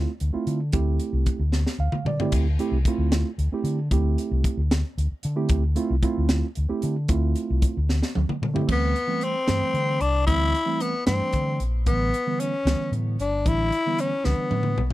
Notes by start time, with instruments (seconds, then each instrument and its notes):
Already playing: reed electric piano A3 C4 E4 F4
0.20 fingered electric bass D2, closed hi-hat
0.33 reed electric piano A3 C4 E4 F4, muted fingered electric bass stroke
0.47 fingered electric bass D3, closed hi-hat
0.72 fingered electric bass D2, reed electric piano A3 C4 E4 G4, kick, closed hi-hat
0.99 closed hi-hat
1.13 fingered electric bass C2
1.26 muted fingered electric bass stroke, kick, closed hi-hat
1.39 fingered electric bass D2
1.52 snare
1.67 snare
1.79 fingered electric bass D2, reed electric piano F5
1.92 muted fingered electric bass stroke, mid tom
2.05 fingered electric bass D3, reed electric piano D5, mid tom
2.20 reed electric piano A3 C4 E4 G4, floor tom
2.32 fingered electric bass D2, kick, closed hi-hat, crash
2.59 reed electric piano A3 C4 E4 G4, closed hi-hat
2.71 fingered electric bass C2
2.85 reed electric piano A3 C4 E4 F4, muted fingered electric bass stroke, kick, closed hi-hat
2.98 fingered electric bass D2
3.12 snare, closed hi-hat
3.38 fingered electric bass D2, closed hi-hat
3.52 reed electric piano A3 C4 E4 G4, muted fingered electric bass stroke
3.64 fingered electric bass D3, closed hi-hat
3.91 fingered electric bass D2, reed electric piano A3 C4 E4 G4, kick, closed hi-hat
4.18 closed hi-hat
4.31 fingered electric bass C2
4.44 muted fingered electric bass stroke, kick, closed hi-hat
4.57 fingered electric bass D2
4.71 snare, closed hi-hat
4.98 fingered electric bass D2, closed hi-hat
5.12 muted fingered electric bass stroke
5.23 fingered electric bass D3, closed hi-hat
5.36 reed electric piano A3 C4 E4 G4
5.49 fingered electric bass D2, kick, closed hi-hat
5.76 reed electric piano A3 C4 E4 F4, closed hi-hat
5.90 fingered electric bass C2
6.02 reed electric piano A3 C4 E4 F4, muted fingered electric bass stroke, kick, closed hi-hat
6.18 fingered electric bass D2
6.29 snare, closed hi-hat
6.55 fingered electric bass D2, closed hi-hat
6.69 reed electric piano A3 C4 E4 G4, muted fingered electric bass stroke
6.82 fingered electric bass D3, closed hi-hat
7.08 fingered electric bass D2, reed electric piano A3 C4 E4 F4, kick, closed hi-hat
7.36 closed hi-hat
7.50 fingered electric bass C2
7.62 muted fingered electric bass stroke, kick, closed hi-hat
7.77 fingered electric bass D2
7.89 snare
8.02 snare
8.15 fingered electric bass D2, high tom
8.29 muted fingered electric bass stroke, mid tom
8.42 fingered electric bass D3, mid tom
8.54 reed electric piano A3 C4 E4 G4, floor tom
8.67 fingered electric bass D2, reed electric piano E3 G3 A3 C4, kick, crash
8.72 tenor saxophone B3
8.96 closed hi-hat
9.07 reed electric piano E3 G3 A3 C4
9.21 tenor saxophone C4, closed hi-hat
9.47 fingered electric bass G2, reed electric piano E3 G3 A3 C4, snare, closed hi-hat
9.61 muted fingered electric bass stroke
9.74 fingered electric bass D3, closed hi-hat
10.00 fingered electric bass C2, tenor saxophone D4, closed hi-hat
10.27 fingered electric bass D2, reed electric piano E3 G3 A3 C4, tenor saxophone E4, kick, closed hi-hat
10.55 closed hi-hat
10.66 reed electric piano E3 G3 A3 C4
10.80 tenor saxophone B3, closed hi-hat
11.06 fingered electric bass G2, reed electric piano E3 G3 A3 D4, tenor saxophone C4, snare, closed hi-hat
11.20 muted fingered electric bass stroke
11.33 fingered electric bass D3, kick, closed hi-hat
11.60 fingered electric bass A#1, closed hi-hat
11.85 fingered electric bass A1, reed electric piano D3 E3 G3 B3, tenor saxophone B3, kick, closed hi-hat
12.14 closed hi-hat
12.27 reed electric piano D3 E3 G3 B3
12.40 tenor saxophone C#4, closed hi-hat
12.65 fingered electric bass C#2, reed electric piano D3 E3 G3 B3, snare, closed hi-hat
12.79 muted fingered electric bass stroke
12.92 fingered electric bass A2, closed hi-hat
13.19 fingered electric bass G1, tenor saxophone D4, closed hi-hat
13.45 fingered electric bass A1, reed electric piano D3 E3 G3 D4, tenor saxophone E4, kick, closed hi-hat
13.72 closed hi-hat
13.86 reed electric piano D3 E3 G3 B3
13.98 tenor saxophone C#4, closed hi-hat
14.24 fingered electric bass C#2, reed electric piano D3 E3 G3 D4, tenor saxophone B3, snare
14.38 muted fingered electric bass stroke
14.51 fingered electric bass A2, high tom
14.63 mid tom
14.77 fingered electric bass B1, mid tom